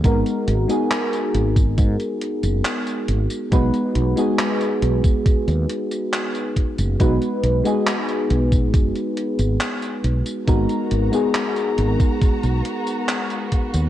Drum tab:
HH |xxxxxxxxxxxxxxxx|xxxxxxxxxxxxxxxx|xxxxxxxxxxxxxxxx|xxxxxxxxxxxxxxxx|
TB |xx-xxx-xxx-xxx-x|xx-xxx-xxx-xxx-x|xx-xxx-xxx-xxx-x|xx-xxx-xxx-xxx-x|
CP |----x-------x---|----x-------x---|----x-------x---|----x-------x---|
BD |o------oo-------|o------oo-----o-|o------oo-------|o------oo-----o-|